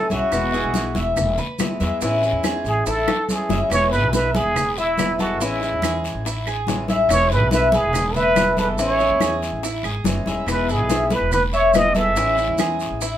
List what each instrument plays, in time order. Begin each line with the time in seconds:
Already playing: muted trumpet A4
0.10 upright bass B1, steel-string acoustic guitar G#3 C#4 E4, muted trumpet F#4, cuban tres E5, high bongo, high conga, short guiro, maracas
0.31 upright bass E1, steel-string acoustic guitar B2 E3 G#3 B3 E4, high bongo, high conga, long guiro, claves, maracas
0.52 steel-string acoustic guitar E3 G#3 B3 E4, cuban tres G#4, high conga, maracas
0.64 upright bass B1
0.74 steel-string acoustic guitar E3 G#3 B3 E4, high bongo, high conga, short guiro, maracas
0.95 upright bass E1, cuban tres E5, high conga, short guiro, maracas
1.16 upright bass E1, muted steel-string acoustic guitar stroke, high bongo, high conga, low conga, long guiro, claves, maracas
1.38 cuban tres B4, high conga, low conga, maracas
1.59 steel-string acoustic guitar E3 G#3 B3 E4, high bongo, low bongo, high conga, short guiro, claves, maracas
1.80 upright bass E2, steel-string acoustic guitar E3 G#3 B3 E4, cuban tres E5, high conga, short guiro, maracas
2.01 upright bass A1, steel-string acoustic guitar E3 G#3 C#4 E4, cuban tres E4, high bongo, high conga, long guiro, maracas
2.22 steel-string acoustic guitar G#3 C#4 E4, high bongo, high conga, maracas
2.33 upright bass E2
2.44 steel-string acoustic guitar E3 G#3 C#4 E4, cuban tres G#4, high bongo, high conga, short guiro, claves, maracas
2.64 upright bass A1, muted trumpet G#4, high conga, short guiro, maracas
2.86 upright bass A1, cuban tres E4, muted trumpet A4, muted steel-string acoustic guitar stroke, high bongo, high conga, long guiro, maracas
3.07 cuban tres A4, high bongo, high conga, claves, maracas
3.29 steel-string acoustic guitar E3 G#3 C#4 E4, muted trumpet G#4, high conga, short guiro, maracas
3.49 upright bass F#1, steel-string acoustic guitar G#3 C#4 E4, cuban tres E5, low bongo, high conga, short guiro, maracas
3.70 upright bass E1, steel-string acoustic guitar B2 E3 G#3 B3 E4, muted trumpet C#5, high bongo, high conga, long guiro, claves, maracas
3.91 steel-string acoustic guitar E3 G#3 B3 E4, muted trumpet B4, cuban tres B4, high conga, maracas
4.02 upright bass B1
4.12 steel-string acoustic guitar E3 G#3 B3 E4, muted trumpet B4, cuban tres E5, high bongo, high conga, short guiro, maracas
4.35 muted trumpet G#4, cuban tres B4, high conga, short guiro, maracas
4.45 upright bass E1
4.56 muted steel-string acoustic guitar stroke, high bongo, high conga, low conga, long guiro, claves, maracas
4.77 muted trumpet E4, cuban tres E5, high conga, maracas
4.97 steel-string acoustic guitar E3 G#3 B3 E4, high bongo, low bongo, high conga, short guiro, claves, maracas
5.18 steel-string acoustic guitar E3 G#3 B3 E4, muted trumpet F#4, cuban tres A4, high conga, short guiro, maracas
5.40 upright bass A1, steel-string acoustic guitar E3 G#3 C#4 E4, cuban tres E4, muted trumpet E4, high bongo, high conga, long guiro, maracas
5.60 steel-string acoustic guitar G#3 C#4 E4, high bongo, high conga, maracas
5.72 upright bass E2
5.82 steel-string acoustic guitar E3 G#3 C#4 E4, cuban tres G#4, high bongo, high conga, short guiro, claves, maracas
6.04 high conga, short guiro, maracas
6.15 upright bass A1
6.25 cuban tres E4, muted steel-string acoustic guitar stroke, high bongo, high conga, long guiro, maracas
6.46 cuban tres G#4, high bongo, high conga, claves, maracas
6.67 steel-string acoustic guitar E3 G#3 C#4 E4, high bongo, low bongo, high conga, short guiro, maracas
6.88 steel-string acoustic guitar G#3 C#4 E4, cuban tres E5, high bongo, high conga, short guiro, maracas
7.09 upright bass E1, steel-string acoustic guitar B2 E3 G#3 B3 E4, muted trumpet C#5, high bongo, high conga, long guiro, claves, maracas
7.30 steel-string acoustic guitar E3 G#3 B3 E4, muted trumpet B4, cuban tres B4, high conga, maracas
7.40 upright bass B1
7.50 steel-string acoustic guitar E3 G#3 B3 E4, muted trumpet B4, cuban tres E5, high bongo, high conga, short guiro, maracas
7.72 muted trumpet G#4, cuban tres B4, high conga, short guiro, maracas
7.83 upright bass E1
7.93 muted steel-string acoustic guitar stroke, high bongo, high conga, low conga, long guiro, claves, maracas
8.14 muted trumpet B4, cuban tres E5, high conga, low conga, maracas
8.35 steel-string acoustic guitar E3 G#3 B3 E4, high bongo, low bongo, high conga, short guiro, claves, maracas
8.57 steel-string acoustic guitar E3 G#3 B3 E4, cuban tres A4, muted trumpet B4, high conga, short guiro, maracas
8.77 upright bass A1, steel-string acoustic guitar E3 G#3 C#4 E4, cuban tres E4, muted trumpet C#5, high bongo, high conga, long guiro, maracas
8.99 steel-string acoustic guitar G#3 C#4 E4, high bongo, high conga, maracas
9.10 upright bass E2
9.20 steel-string acoustic guitar E3 G#3 C#4 E4, cuban tres G#4, high bongo, high conga, short guiro, claves, maracas
9.42 high conga, short guiro, maracas
9.52 upright bass A1
9.63 cuban tres E4, muted steel-string acoustic guitar stroke, high bongo, high conga, long guiro, maracas
9.83 upright bass G#1, cuban tres G#4, high bongo, high conga, claves, maracas
10.04 upright bass F#1, steel-string acoustic guitar E3 G#3 C#4 E4, high bongo, low bongo, high conga, short guiro, maracas
10.25 upright bass E1, steel-string acoustic guitar G#3 C#4 E4, cuban tres E5, high bongo, high conga, short guiro, maracas
10.46 upright bass E1, steel-string acoustic guitar B2 E3 G#3 B3 E4, muted trumpet B4, high bongo, high conga, long guiro, claves, maracas
10.69 steel-string acoustic guitar E3 G#3 B3 E4, muted trumpet G#4, cuban tres B4, high conga, maracas
10.79 upright bass B1
10.89 steel-string acoustic guitar E3 G#3 B3 E4, cuban tres E5, high bongo, high conga, short guiro, maracas
11.11 cuban tres B4, muted trumpet B4, high conga, short guiro, maracas
11.21 upright bass E1
11.31 muted trumpet B4, muted steel-string acoustic guitar stroke, high bongo, high conga, low conga, long guiro, claves, maracas
11.53 muted trumpet C#5, cuban tres E5, high conga, maracas
11.73 steel-string acoustic guitar E3 G#3 B3 E4, muted trumpet D#5, high bongo, low bongo, high conga, short guiro, claves, maracas
11.94 steel-string acoustic guitar E3 G#3 B3 E4, cuban tres A4, muted trumpet E5, high conga, short guiro, maracas
12.15 upright bass A1, steel-string acoustic guitar E3 G#3 C#4 E4, cuban tres E4, high bongo, high conga, long guiro, maracas
12.36 steel-string acoustic guitar G#3 C#4 E4, high bongo, high conga, maracas
12.47 upright bass E2
12.58 steel-string acoustic guitar E3 G#3 C#4 E4, cuban tres G#4, high bongo, high conga, short guiro, claves, maracas
12.80 high conga, short guiro, maracas
12.90 upright bass A1
13.01 cuban tres E4, muted steel-string acoustic guitar stroke, high bongo, high conga, long guiro, maracas